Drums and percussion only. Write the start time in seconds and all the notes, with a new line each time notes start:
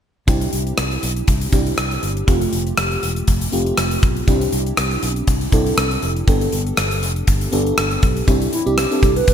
0.28 kick, closed hi-hat
0.41 closed hi-hat
0.53 closed hi-hat
0.67 closed hi-hat
0.78 cross-stick, closed hi-hat
0.91 closed hi-hat
1.03 closed hi-hat
1.16 closed hi-hat
1.28 kick, closed hi-hat
1.41 closed hi-hat
1.52 kick, closed hi-hat
1.67 closed hi-hat
1.78 cross-stick, closed hi-hat
1.91 closed hi-hat
2.03 closed hi-hat
2.17 closed hi-hat
2.28 kick, closed hi-hat
2.41 closed hi-hat
2.53 closed hi-hat
2.67 closed hi-hat
2.78 cross-stick, closed hi-hat
2.91 closed hi-hat
3.03 closed hi-hat
3.16 closed hi-hat
3.27 kick, closed hi-hat
3.41 closed hi-hat
3.52 closed hi-hat
3.66 closed hi-hat
3.77 cross-stick, closed hi-hat
3.91 closed hi-hat
4.03 kick, closed hi-hat
4.17 closed hi-hat
4.28 kick, closed hi-hat
4.41 closed hi-hat
4.52 closed hi-hat
4.66 closed hi-hat
4.77 cross-stick, closed hi-hat
4.91 closed hi-hat
5.03 closed hi-hat
5.16 closed hi-hat
5.27 kick, closed hi-hat
5.41 closed hi-hat
5.52 kick, closed hi-hat
5.66 closed hi-hat
5.78 cross-stick, closed hi-hat
5.91 closed hi-hat
6.03 closed hi-hat
6.16 closed hi-hat
6.28 kick, closed hi-hat
6.41 closed hi-hat
6.52 closed hi-hat
6.67 closed hi-hat
6.77 cross-stick, closed hi-hat
6.91 closed hi-hat
7.03 closed hi-hat
7.16 closed hi-hat
7.27 kick, closed hi-hat
7.41 closed hi-hat
7.52 closed hi-hat
7.67 closed hi-hat
7.78 cross-stick, closed hi-hat
7.91 closed hi-hat
8.03 kick, closed hi-hat
8.17 closed hi-hat
8.28 kick, closed hi-hat
8.42 closed hi-hat
8.53 closed hi-hat
8.67 closed hi-hat
8.78 cross-stick, closed hi-hat
8.92 closed hi-hat
9.03 kick, closed hi-hat
9.16 closed hi-hat
9.28 kick, closed hi-hat